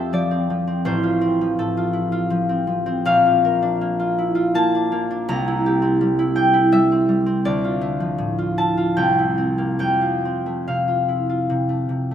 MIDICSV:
0, 0, Header, 1, 2, 480
1, 0, Start_track
1, 0, Key_signature, -1, "major"
1, 0, Tempo, 729927
1, 557, Time_signature, 3, 2, 24, 8
1, 1512, Tempo, 748130
1, 2952, Tempo, 726392
1, 5352, Tempo, 782269
1, 5832, Tempo, 849858
1, 6792, Tempo, 823045
1, 7659, End_track
2, 0, Start_track
2, 0, Title_t, "Harp"
2, 0, Program_c, 0, 46
2, 0, Note_on_c, 0, 41, 68
2, 0, Note_on_c, 0, 53, 50
2, 0, Note_on_c, 0, 60, 53
2, 0, Note_on_c, 0, 65, 56
2, 0, Note_on_c, 0, 69, 51
2, 0, Note_on_c, 0, 76, 88
2, 78, Note_off_c, 0, 53, 0
2, 84, Note_on_c, 0, 53, 54
2, 89, Note_on_c, 0, 74, 85
2, 196, Note_off_c, 0, 60, 0
2, 204, Note_on_c, 0, 60, 47
2, 256, Note_off_c, 0, 76, 0
2, 321, Note_off_c, 0, 53, 0
2, 329, Note_on_c, 0, 53, 51
2, 435, Note_off_c, 0, 60, 0
2, 443, Note_on_c, 0, 60, 51
2, 559, Note_on_c, 0, 33, 71
2, 562, Note_on_c, 0, 72, 92
2, 593, Note_off_c, 0, 41, 0
2, 670, Note_off_c, 0, 65, 0
2, 678, Note_on_c, 0, 65, 52
2, 790, Note_off_c, 0, 60, 0
2, 798, Note_on_c, 0, 60, 54
2, 900, Note_off_c, 0, 74, 0
2, 920, Note_off_c, 0, 53, 0
2, 928, Note_on_c, 0, 53, 53
2, 1035, Note_off_c, 0, 69, 0
2, 1043, Note_on_c, 0, 45, 47
2, 1045, Note_on_c, 0, 69, 72
2, 1158, Note_off_c, 0, 65, 0
2, 1165, Note_on_c, 0, 65, 54
2, 1270, Note_on_c, 0, 64, 47
2, 1386, Note_off_c, 0, 65, 0
2, 1394, Note_on_c, 0, 65, 58
2, 1474, Note_off_c, 0, 64, 0
2, 1506, Note_off_c, 0, 53, 0
2, 1514, Note_on_c, 0, 53, 62
2, 1628, Note_off_c, 0, 60, 0
2, 1635, Note_on_c, 0, 60, 49
2, 1743, Note_off_c, 0, 53, 0
2, 1751, Note_on_c, 0, 53, 49
2, 1864, Note_off_c, 0, 60, 0
2, 1871, Note_on_c, 0, 60, 56
2, 1996, Note_on_c, 0, 34, 75
2, 2001, Note_on_c, 0, 77, 104
2, 2018, Note_off_c, 0, 60, 0
2, 2024, Note_off_c, 0, 33, 0
2, 2024, Note_off_c, 0, 72, 0
2, 2025, Note_off_c, 0, 69, 0
2, 2026, Note_off_c, 0, 45, 0
2, 2118, Note_off_c, 0, 65, 0
2, 2126, Note_on_c, 0, 65, 53
2, 2248, Note_on_c, 0, 70, 61
2, 2362, Note_on_c, 0, 62, 60
2, 2483, Note_on_c, 0, 58, 50
2, 2592, Note_off_c, 0, 65, 0
2, 2600, Note_on_c, 0, 65, 58
2, 2721, Note_on_c, 0, 64, 52
2, 2820, Note_off_c, 0, 65, 0
2, 2828, Note_on_c, 0, 65, 57
2, 2919, Note_off_c, 0, 64, 0
2, 2947, Note_off_c, 0, 58, 0
2, 2952, Note_on_c, 0, 58, 60
2, 2957, Note_on_c, 0, 81, 117
2, 3078, Note_off_c, 0, 62, 0
2, 3086, Note_on_c, 0, 62, 51
2, 3191, Note_off_c, 0, 58, 0
2, 3199, Note_on_c, 0, 58, 57
2, 3316, Note_off_c, 0, 62, 0
2, 3324, Note_on_c, 0, 62, 58
2, 3442, Note_on_c, 0, 36, 81
2, 3445, Note_on_c, 0, 82, 96
2, 3450, Note_off_c, 0, 65, 0
2, 3451, Note_off_c, 0, 34, 0
2, 3452, Note_off_c, 0, 53, 0
2, 3452, Note_off_c, 0, 77, 0
2, 3458, Note_off_c, 0, 62, 0
2, 3569, Note_on_c, 0, 64, 61
2, 3690, Note_on_c, 0, 67, 64
2, 3770, Note_off_c, 0, 81, 0
2, 3795, Note_on_c, 0, 60, 58
2, 3920, Note_on_c, 0, 55, 54
2, 4031, Note_off_c, 0, 64, 0
2, 4039, Note_on_c, 0, 64, 59
2, 4150, Note_on_c, 0, 79, 98
2, 4156, Note_on_c, 0, 62, 48
2, 4259, Note_off_c, 0, 64, 0
2, 4267, Note_on_c, 0, 64, 60
2, 4357, Note_off_c, 0, 62, 0
2, 4384, Note_off_c, 0, 55, 0
2, 4390, Note_on_c, 0, 55, 65
2, 4393, Note_on_c, 0, 76, 99
2, 4513, Note_off_c, 0, 60, 0
2, 4521, Note_on_c, 0, 60, 50
2, 4624, Note_off_c, 0, 55, 0
2, 4632, Note_on_c, 0, 55, 52
2, 4741, Note_off_c, 0, 60, 0
2, 4749, Note_on_c, 0, 60, 56
2, 4804, Note_off_c, 0, 70, 0
2, 4873, Note_on_c, 0, 38, 70
2, 4875, Note_on_c, 0, 74, 95
2, 4889, Note_off_c, 0, 60, 0
2, 4889, Note_off_c, 0, 64, 0
2, 4890, Note_off_c, 0, 79, 0
2, 4891, Note_off_c, 0, 55, 0
2, 4891, Note_off_c, 0, 76, 0
2, 4893, Note_off_c, 0, 58, 0
2, 4894, Note_off_c, 0, 36, 0
2, 4896, Note_off_c, 0, 82, 0
2, 4898, Note_off_c, 0, 67, 0
2, 5000, Note_on_c, 0, 65, 51
2, 5112, Note_on_c, 0, 57, 58
2, 5238, Note_on_c, 0, 53, 49
2, 5357, Note_on_c, 0, 45, 52
2, 5473, Note_off_c, 0, 65, 0
2, 5480, Note_on_c, 0, 65, 53
2, 5597, Note_on_c, 0, 64, 40
2, 5600, Note_on_c, 0, 81, 87
2, 5711, Note_off_c, 0, 65, 0
2, 5718, Note_on_c, 0, 65, 51
2, 5801, Note_off_c, 0, 64, 0
2, 5837, Note_on_c, 0, 36, 69
2, 5837, Note_on_c, 0, 79, 84
2, 5852, Note_off_c, 0, 57, 0
2, 5852, Note_off_c, 0, 74, 0
2, 5853, Note_off_c, 0, 38, 0
2, 5853, Note_off_c, 0, 45, 0
2, 5854, Note_off_c, 0, 53, 0
2, 5855, Note_off_c, 0, 65, 0
2, 5856, Note_off_c, 0, 81, 0
2, 5961, Note_on_c, 0, 64, 42
2, 6068, Note_on_c, 0, 60, 44
2, 6184, Note_on_c, 0, 58, 46
2, 6298, Note_off_c, 0, 79, 0
2, 6302, Note_on_c, 0, 41, 55
2, 6307, Note_on_c, 0, 79, 81
2, 6327, Note_off_c, 0, 58, 0
2, 6330, Note_off_c, 0, 36, 0
2, 6334, Note_off_c, 0, 64, 0
2, 6428, Note_on_c, 0, 65, 40
2, 6555, Note_off_c, 0, 60, 0
2, 6562, Note_on_c, 0, 60, 41
2, 6681, Note_on_c, 0, 57, 43
2, 6802, Note_on_c, 0, 48, 41
2, 6803, Note_on_c, 0, 77, 53
2, 6914, Note_off_c, 0, 65, 0
2, 6921, Note_on_c, 0, 65, 43
2, 7040, Note_on_c, 0, 64, 36
2, 7156, Note_off_c, 0, 65, 0
2, 7163, Note_on_c, 0, 65, 40
2, 7240, Note_off_c, 0, 64, 0
2, 7274, Note_off_c, 0, 48, 0
2, 7281, Note_on_c, 0, 48, 43
2, 7387, Note_off_c, 0, 57, 0
2, 7394, Note_on_c, 0, 57, 36
2, 7503, Note_off_c, 0, 48, 0
2, 7510, Note_on_c, 0, 48, 35
2, 7633, Note_off_c, 0, 57, 0
2, 7640, Note_on_c, 0, 57, 36
2, 7659, Note_off_c, 0, 41, 0
2, 7659, Note_off_c, 0, 48, 0
2, 7659, Note_off_c, 0, 57, 0
2, 7659, Note_off_c, 0, 60, 0
2, 7659, Note_off_c, 0, 65, 0
2, 7659, Note_off_c, 0, 77, 0
2, 7659, Note_off_c, 0, 79, 0
2, 7659, End_track
0, 0, End_of_file